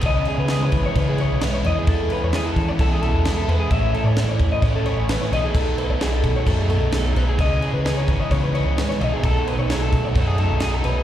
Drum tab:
CC |x-x-x-x-x-x-x-x-|x-x-x-x-x-x-x-x-|x-x-x-x-x-x-x-x-|x-x-x-x-x-x-x-x-|
SD |----o-------o---|----o-------o---|----o-------oo--|----o-------o---|
BD |o-----o-o-------|o-----o-o-------|o-----o-o-------|o-----o-o-------|

CC |x-x-x-x-x-x-x-x-|x-x-x-x-x-x-x-x-|
SD |----o-------oo--|----o-------o---|
BD |o-----o-o-------|o-----o-o-------|